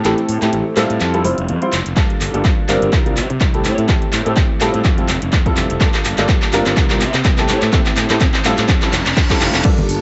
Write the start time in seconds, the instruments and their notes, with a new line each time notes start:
Already playing: riser
0.04 fingered electric bass A1, grand piano A3 C4 E4 G4 A4, clap, closed hi-hat
0.18 closed hi-hat
0.29 fingered electric bass A2, open hi-hat
0.42 fingered electric bass A2, grand piano A3 C4 E4 G4 A4, clap, closed hi-hat
0.53 fingered electric bass A1, closed hi-hat
0.76 fingered electric bass A2, grand piano G3 C4 E4 F4 A4, clap, open hi-hat
0.90 fingered electric bass A2, closed hi-hat
1.00 fingered electric bass F2, clap, closed hi-hat
1.13 grand piano G3 C4 E4 F4 A4, closed hi-hat
1.24 fingered electric bass F1, grand piano G3 C4 E4 F4 C5, open hi-hat
1.38 fingered electric bass F1, closed hi-hat
1.49 fingered electric bass F2, closed hi-hat
1.62 grand piano G3 C4 E4 F4 C5, closed hi-hat
1.73 fingered electric bass F1, clap, open hi-hat
1.86 fingered electric bass F1, closed hi-hat
1.96 fingered electric bass G2, grand piano G3 A#3 D4 F4 A4, kick, clap, closed hi-hat
2.10 closed hi-hat
2.21 fingered electric bass G1, clap, open hi-hat
2.34 fingered electric bass G1, grand piano G3 A#3 D4 F4 A4, closed hi-hat
2.45 fingered electric bass G2, kick, clap, closed hi-hat
2.68 fingered electric bass G1, grand piano G3 C4 D4 F4 A#4, clap, open hi-hat
2.82 fingered electric bass G1, closed hi-hat
2.93 kick, clap, closed hi-hat
3.06 grand piano G3 C4 D4 F4 A#4, closed hi-hat
3.17 fingered electric bass C3, clap, open hi-hat
3.30 fingered electric bass C3, closed hi-hat
3.41 fingered electric bass C2, kick, clap, closed hi-hat
3.54 grand piano A3 C4 E4 G4 A4, closed hi-hat
3.65 fingered electric bass A2, clap, open hi-hat
3.78 fingered electric bass A2, closed hi-hat
3.88 fingered electric bass A1, grand piano A3 C4 E4 G4 A4, kick, clap, closed hi-hat
4.02 closed hi-hat
4.13 fingered electric bass A2, clap, open hi-hat
4.26 fingered electric bass A2, grand piano A3 C4 E4 G4 A4, closed hi-hat
4.37 fingered electric bass A1, kick, clap, closed hi-hat
4.61 fingered electric bass A2, grand piano G3 C4 E4 F4 A4, clap, open hi-hat
4.74 fingered electric bass A2, closed hi-hat
4.85 fingered electric bass F2, kick, clap, closed hi-hat
4.98 grand piano G3 C4 E4 F4 A4, closed hi-hat
5.08 fingered electric bass F1, clap, open hi-hat
5.22 fingered electric bass F1, closed hi-hat
5.33 fingered electric bass F2, kick, clap, closed hi-hat
5.46 grand piano G3 C4 E4 F4 A4, kick, closed hi-hat
5.57 fingered electric bass F1, clap, open hi-hat
5.70 fingered electric bass F1, closed hi-hat
5.81 fingered electric bass G2, grand piano G3 A#3 D4 F4 A4, kick, clap, closed hi-hat
5.94 clap, closed hi-hat
6.05 fingered electric bass G1, clap, open hi-hat
6.18 fingered electric bass G1, grand piano G3 A#3 D4 F4 A4, clap, closed hi-hat
6.29 fingered electric bass G2, kick, clap, closed hi-hat
6.42 clap
6.53 fingered electric bass G1, grand piano G3 C4 D4 F4 A#4, clap, open hi-hat
6.66 fingered electric bass G1, clap, closed hi-hat
6.77 fingered electric bass C2, kick, clap, closed hi-hat
6.90 grand piano G3 C4 D4 F4 A#4, clap, closed hi-hat
7.01 fingered electric bass C3, clap, open hi-hat
7.14 fingered electric bass C3, clap, closed hi-hat
7.25 fingered electric bass C2, kick, clap, closed hi-hat
7.38 grand piano A3 C4 E4 G4 A4, clap, closed hi-hat
7.49 fingered electric bass A2, clap, open hi-hat
7.62 fingered electric bass A2, clap, closed hi-hat
7.73 fingered electric bass A1, grand piano A3 C4 E4 G4 A4, kick, clap, closed hi-hat
7.86 clap, closed hi-hat
7.97 fingered electric bass A2, clap, open hi-hat
8.10 fingered electric bass A2, grand piano A3 C4 E4 G4 A4, clap, closed hi-hat
8.21 fingered electric bass A1, kick, clap, closed hi-hat
8.34 clap
8.44 fingered electric bass A2, grand piano G3 C4 E4 F4 A4, clap, open hi-hat
8.58 fingered electric bass A2, clap, closed hi-hat
8.69 fingered electric bass F2, kick, clap, closed hi-hat, reverse cymbal
8.82 grand piano G3 C4 E4 F4 A4, muted fingered electric bass stroke, clap, closed hi-hat
8.93 fingered electric bass F1, clap, open hi-hat
9.06 fingered electric bass F1, clap, closed hi-hat
9.17 fingered electric bass F2, kick, clap, closed hi-hat
9.30 grand piano G3 C4 E4 F4 A4, kick, clap, closed hi-hat
9.41 fingered electric bass F1, clap, open hi-hat
9.54 fingered electric bass F1, clap, closed hi-hat
9.65 fingered electric bass G2, grand piano G3 A#3 D4 F4 A4, kick, closed hi-hat, crash, tambourine
9.78 closed hi-hat, tambourine, high conga
9.89 fingered electric bass G1, open hi-hat, tambourine